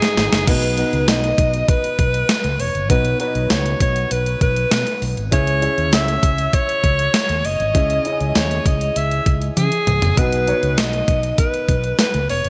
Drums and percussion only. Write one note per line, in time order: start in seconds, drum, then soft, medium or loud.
0.02 snare medium
0.02 closed hi-hat medium
0.17 snare medium
0.17 closed hi-hat medium
0.33 snare loud
0.33 closed hi-hat soft
0.47 kick loud
0.47 closed hi-hat medium
0.47 crash loud
0.63 closed hi-hat medium
0.78 closed hi-hat medium
0.93 closed hi-hat soft
1.08 snare loud
1.08 closed hi-hat medium
1.08 tambourine medium
1.24 closed hi-hat medium
1.38 kick loud
1.38 closed hi-hat medium
1.54 closed hi-hat medium
1.68 kick loud
1.68 closed hi-hat medium
1.84 closed hi-hat medium
1.99 kick medium
1.99 closed hi-hat medium
2.14 closed hi-hat soft
2.29 snare loud
2.29 closed hi-hat loud
2.29 tambourine medium
2.44 closed hi-hat medium
2.60 open hi-hat medium
2.75 closed hi-hat soft
2.90 kick loud
2.90 closed hi-hat medium
3.05 closed hi-hat medium
3.20 closed hi-hat medium
3.35 closed hi-hat medium
3.50 snare loud
3.50 closed hi-hat medium
3.50 tambourine medium
3.66 closed hi-hat medium
3.80 kick loud
3.80 closed hi-hat medium
3.96 closed hi-hat medium
4.11 closed hi-hat medium
4.26 closed hi-hat medium
4.41 kick loud
4.41 closed hi-hat medium
4.56 closed hi-hat soft
4.71 snare loud
4.71 closed hi-hat loud
4.71 tambourine medium
4.87 closed hi-hat medium
5.02 open hi-hat medium
5.17 closed hi-hat soft
5.32 kick loud
5.32 closed hi-hat loud
5.47 closed hi-hat medium
5.62 closed hi-hat medium
5.78 closed hi-hat soft
5.93 snare loud
5.93 closed hi-hat medium
5.93 tambourine medium
6.08 closed hi-hat medium
6.23 kick loud
6.23 closed hi-hat medium
6.38 closed hi-hat medium
6.53 kick loud
6.53 closed hi-hat medium
6.69 closed hi-hat medium
6.84 kick medium
6.84 closed hi-hat medium
6.99 closed hi-hat medium
7.14 snare loud
7.14 closed hi-hat loud
7.14 tambourine medium
7.29 closed hi-hat medium
7.45 open hi-hat medium
7.60 closed hi-hat soft
7.75 kick loud
7.75 closed hi-hat loud
7.90 closed hi-hat medium
8.05 closed hi-hat medium
8.21 closed hi-hat soft
8.35 snare loud
8.35 closed hi-hat medium
8.35 tambourine medium
8.51 closed hi-hat medium
8.66 kick loud
8.66 closed hi-hat medium
8.81 closed hi-hat medium
8.96 closed hi-hat loud
9.11 closed hi-hat medium
9.26 kick medium
9.26 closed hi-hat medium
9.42 closed hi-hat soft
9.57 closed hi-hat loud
9.57 high tom medium
9.72 closed hi-hat medium
9.87 closed hi-hat medium
9.87 mid tom medium
10.02 closed hi-hat soft
10.02 floor tom medium
10.17 kick loud
10.17 closed hi-hat loud
10.32 closed hi-hat medium
10.47 closed hi-hat medium
10.63 closed hi-hat soft
10.78 snare loud
10.78 closed hi-hat medium
10.78 tambourine medium
10.93 closed hi-hat medium
11.08 kick loud
11.08 closed hi-hat medium
11.23 closed hi-hat medium
11.38 kick loud
11.38 closed hi-hat loud
11.54 closed hi-hat medium
11.69 kick medium
11.69 closed hi-hat medium
11.84 closed hi-hat soft
11.99 snare loud
11.99 closed hi-hat loud
11.99 tambourine medium
12.14 closed hi-hat medium
12.29 open hi-hat medium
12.45 closed hi-hat soft